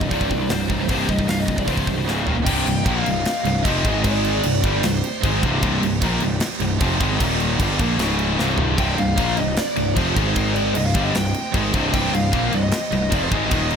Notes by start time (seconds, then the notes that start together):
Already playing: C2 G2 C3 G3 D#4
0.01 C2 G2, kick
0.09 C1 C2 G2 D5, kick, open hi-hat
0.13 C3
0.21 kick
0.31 C2 G2, kick
0.41 C2 G2
0.49 C1 C2 G2 C5, snare, open hi-hat
0.68 C1 C2 G2 C3 G3 D#4, kick
0.80 C2 G2
0.89 C1 C2 G2 C3 G3 D#4 C5, kick, open hi-hat
1.08 C1 G2 D#5, kick
1.12 C2 G2
1.19 C2 G2, kick
1.28 C1 C2 G2 F5, snare, open hi-hat
1.39 D#5
1.48 C1 C2 G2, kick
1.58 C2 G2 D5, kick
1.67 C1 C2 G2 C3 C5, kick, open hi-hat
1.77 kick
1.87 C2 G2, kick
1.98 C2 G2
2.07 C#1 C#2 G#2 C#3, snare
2.26 D#1 D#2 A#2 D#3, floor tom
2.33 D#2 A#2
2.37 D#2 A#2
2.42 C2 G2 C3 D5 D#5 G5
2.46 C1 C2 G2 C3 C4 G4, kick, crash
2.64 C1 C2 G2, crash
2.68 G2
2.84 A#1 A#2 F3 A#3 F5, kick, crash
2.89 A#2 F3 A#3
3.06 C1 C2 G2, crash
3.25 snare, crash
3.45 C1 C2 G2, crash
3.62 F1 F2 C3 F3 D#5, kick, crash
3.67 F2 C3 F3
3.85 G#1 G#2 D#3 G#3 D#4 A#4 G#5, kick, crash
4.04 D5, kick, crash
4.25 crash
4.41 C1 C4 D#4 G4 D5, crash
4.47 C2 G2
4.64 G1 G2 D3 G3, kick, crash
4.83 C1 C2 G2 C5, snare, crash
5.04 crash
5.22 G#1 G#2 D#3 G#3, kick, crash
5.26 G#3
5.43 C1 C2 G2 C3, kick, crash
5.63 C1 C2 G2 C3, kick, crash
5.81 C1 C2, crash
5.85 C2 G2
6.01 A#1 A#2 F3 A#3, kick, crash
6.20 C1 C2 G2, crash
6.40 snare, crash
6.60 C1 C2 G2, crash
6.80 F1 F2 C3 F3, kick, crash
7.01 G#1 G#2 D#3 G#3, kick, crash
7.19 D#1 D#2 A#2 D#3 A#3 F4, kick, crash
7.40 crash
7.58 G1 G2 C3 D3 G3 D4 D#4, kick, crash
7.79 A#1 A#2 F3 A#3, kick, crash
7.98 C#1 C#2 G#2 C#3 G#3 C#5, snare, crash
8.19 crash
8.38 C1 C2 G2 C3 C4 D#4 G4 D5, snare
8.58 floor tom
8.77 C1 C2 G2 C3 G5, kick, crash
8.98 C1 C2 G2 F5, crash
9.17 A#1 A#2 F3 A#3, kick, crash
9.37 C1 C2 G2 D#5, crash
9.57 D5, snare, crash
9.76 C1 C2 G2, crash
9.96 F1 F2 C3 F3 C5, kick, crash
10.16 G#1 G#2 D#3 G#3 D#4 A#4 G#5, kick, crash
10.36 C5, kick, crash
10.54 D5, crash
10.75 C1 C2 G2 C4 G4 C5 D#5, crash
10.84 F5
10.94 G1 G2 D3 G3, kick, crash
11.03 D#5
11.15 C1 C2 G2 G5, snare, crash
11.34 crash
11.54 G#1 G#2 D#3 G#3, kick, crash
11.73 C1 C2 G2 C3, kick, crash
11.93 C1 C2 G2 C3 G5, kick, crash
12.12 C1 C2 G2 F5, crash
12.32 A#1 A#2 F3 A#3, kick, crash
12.52 C1 C2 G2 D#5, crash
12.71 snare, crash
12.92 C1 C2 G2, crash
13.10 F1 F2 C3 F3 D5, kick, crash
13.23 C5
13.30 G#1 G#2 D#3 G#3 D#5, kick, crash
13.50 D#1 D#2 A#2 D#3, kick, crash
13.54 D#3 A#3 F4
13.70 crash